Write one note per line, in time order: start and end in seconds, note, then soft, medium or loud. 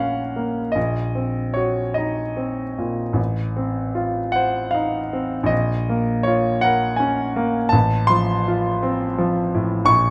0.00 0.72 A#1 soft
0.00 0.36 A#3 soft
0.00 0.60 C#4 soft
0.00 0.78 F4 soft
0.00 0.20 A#4 soft
0.00 0.74 F5 medium
0.00 0.79 F#5 medium
0.36 0.76 A#3 soft
0.72 3.14 A#1 soft
0.72 1.54 D#5 medium
1.15 1.81 C4 soft
1.54 2.22 F#4 soft
1.54 1.96 C#5 medium
1.94 2.62 D#4 soft
1.94 3.17 D#5 medium
2.37 3.02 C4 soft
2.78 3.18 A#2 soft
3.13 5.45 A1 soft
3.56 4.19 C4 soft
3.95 4.59 F4 soft
4.32 4.98 C5 soft
4.32 4.73 F#5 medium
4.71 5.36 D#4 soft
4.71 5.49 F5 medium
5.13 5.51 C4 soft
5.43 7.65 A#1 medium
5.43 6.25 D#5 medium
5.89 6.49 A#3 soft
6.23 6.86 F4 soft
6.23 6.62 C#5 medium
6.61 7.21 A#4 soft
6.61 6.99 F#5 medium
6.96 7.58 C#4 soft
6.96 7.71 G#5 medium
7.36 7.73 A#3 soft
7.69 9.85 A1 medium
7.69 8.08 A5 medium
8.07 8.69 F3 soft
8.07 9.88 C6 medium
8.48 9.05 F4 soft
8.83 9.40 C4 medium
9.18 9.75 F3 medium
9.54 9.89 A2 soft
9.85 10.10 A#1 medium
9.85 10.10 C#6 loud